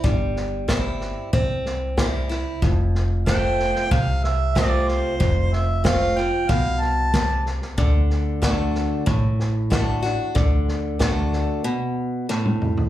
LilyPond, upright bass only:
\new Staff \with { instrumentName = "Upright bass" } { \clef bass \time 4/4 \key f \lydian \tempo 4 = 93 g,,2 c,2 | f,,2 c,2 | f,,2 c,2 | d,2 a,,2 |
d,2 r2 | }